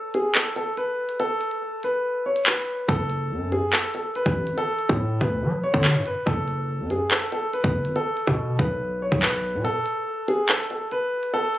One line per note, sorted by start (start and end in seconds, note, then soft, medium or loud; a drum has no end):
0.14 0.30 G#4 medium
0.14 closed hi-hat medium
0.35 0.51 A4 medium
0.35 clap loud
0.35 closed hi-hat medium
0.56 0.72 A4 medium
0.56 closed hi-hat medium
0.77 1.17 B4 medium
0.77 closed hi-hat medium
1.09 closed hi-hat medium
1.20 1.79 A4 medium
1.20 closed hi-hat medium
1.41 closed hi-hat medium
1.51 closed hi-hat soft
1.83 2.23 B4 medium
1.83 closed hi-hat medium
2.26 2.42 C#5 medium
2.36 closed hi-hat medium
2.46 2.86 B4 medium
2.46 clap loud
2.68 open hi-hat medium
2.88 3.32 F#1 loud
2.88 3.48 A4 loud
2.88 kick loud
2.88 closed hi-hat medium
3.10 closed hi-hat medium
3.31 3.61 F#2 loud
3.52 3.68 G#4 medium
3.52 closed hi-hat medium
3.73 3.89 A4 medium
3.73 clap loud
3.73 closed hi-hat medium
3.94 4.11 A4 medium
3.94 closed hi-hat medium
4.15 4.55 B4 medium
4.15 closed hi-hat medium
4.26 4.49 A1 loud
4.26 kick loud
4.47 4.57 G#1 loud
4.47 closed hi-hat medium
4.58 5.17 A4 loud
4.58 closed hi-hat medium
4.79 closed hi-hat medium
4.89 5.20 A2 loud
4.89 kick medium
4.89 closed hi-hat medium
5.21 5.44 D2 loud
5.21 5.61 B4 medium
5.21 kick medium
5.21 closed hi-hat medium
5.42 5.52 F#3 loud
5.63 6.03 C#5 medium
5.74 5.97 D3 loud
5.74 kick medium
5.74 closed hi-hat medium
5.84 clap loud
5.95 6.05 F#2 medium
6.06 6.22 B4 medium
6.06 closed hi-hat medium
6.26 6.81 F#1 loud
6.26 6.86 A4 medium
6.26 kick loud
6.26 closed hi-hat medium
6.48 closed hi-hat medium
6.80 7.00 F#2 loud
6.90 7.07 G#4 medium
6.90 closed hi-hat medium
7.11 7.27 A4 medium
7.11 clap loud
7.11 closed hi-hat medium
7.32 7.48 A4 medium
7.32 closed hi-hat medium
7.53 7.93 B4 medium
7.53 closed hi-hat medium
7.64 7.87 F#1 loud
7.64 kick loud
7.85 7.95 G#1 loud
7.85 closed hi-hat medium
7.96 8.55 A4 medium
7.96 closed hi-hat medium
8.17 closed hi-hat medium
8.27 8.58 B2 loud
8.27 kick medium
8.27 closed hi-hat soft
8.59 9.10 B1 loud
8.59 8.99 B4 medium
8.59 kick medium
8.59 closed hi-hat medium
9.02 9.18 C#5 medium
9.12 9.56 B1 loud
9.12 kick medium
9.12 closed hi-hat medium
9.22 9.62 B4 medium
9.22 clap loud
9.44 open hi-hat medium
9.54 9.64 B2 loud
9.64 10.24 A4 loud
9.64 closed hi-hat medium
9.86 closed hi-hat medium
10.28 10.44 G#4 medium
10.28 closed hi-hat medium
10.49 10.65 A4 medium
10.49 clap loud
10.49 closed hi-hat medium
10.70 10.87 A4 medium
10.70 closed hi-hat medium
10.91 11.31 B4 medium
10.91 closed hi-hat medium
11.23 closed hi-hat medium
11.34 11.58 A4 loud
11.34 closed hi-hat medium
11.55 closed hi-hat medium